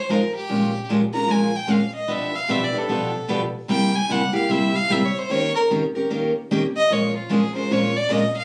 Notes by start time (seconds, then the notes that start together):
Already playing: C5
0.09 F3 G#3 D#4 F4 A#4 C5
0.35 G4
0.49 A#2 F3 G#3 C#4 F4 A#4
0.89 A#2 F3 G#3 C#4 F4 A#4
1.13 G#3 C#4 F4 A#4 A#5
1.28 A#2 F3 G#3 C#4 F4 A#4 G#5
1.56 G5
1.67 A#2 F3 G#3 C#4 F4 A#4
1.72 F5
1.95 D#5
2.08 B2 F3 B3 D4 G4 B4 E5
2.35 F5
2.48 B2 F3 B3 D4 G4 B4 E5
2.64 D5
2.72 B3 D4 G4 B4
2.78 A4
2.89 B2 F3 B3 D4 G4 B4
3.28 B2 F3 B3 D4 G4 B4
3.68 C3 G3 A#3 E4 G4 G5
3.95 G#5
4.09 C3 G3 A#3 E4 G4 F#5
4.33 A#3 E4 G4 F5
4.49 C3 G3 A#3 E4 G4 E5
4.75 F5
4.90 C3 G3 A#3 E4 G4 E5
5.05 C#5
5.18 C5
5.29 D#3 A#3 C#4 G4 A#4 C#5
5.55 A#4
5.70 D#3 A#3 C#4 G4 A#4
5.95 C#4 G4 A#4
6.10 D#3 A#3 C#4 G4 A#4
6.51 D#3 A#3 C#4 G4 A#4
6.77 D#5
6.90 A#2 F3 G#3 C#4 F4 A#4 C#5
7.17 F4
7.29 A#2 F3 G#3 C#4 F4 G#4 A#4
7.54 G#3 C#4 F4 A#4 C5
7.71 A#2 F3 G#3 C#4 F4 A#4 C#5
7.97 D5
8.09 A#2 F3 G#3 C#4 F4 A#4 D#5
8.37 F5